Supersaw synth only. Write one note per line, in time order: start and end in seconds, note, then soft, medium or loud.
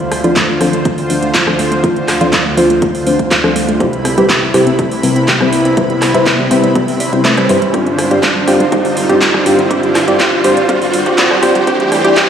0.00 3.76 D2 medium
0.00 3.77 D3 medium
0.00 3.76 F4 medium
0.00 3.77 C5 medium
3.81 7.70 C2 medium
3.81 7.70 C3 medium
3.81 7.70 E4 medium
3.81 7.70 B5 medium
7.74 11.63 G2 medium
7.74 11.63 D3 medium
7.74 11.63 F4 medium
7.74 12.29 C5 medium
11.67 12.29 A2 medium
11.67 12.29 E3 medium
11.67 12.29 G4 medium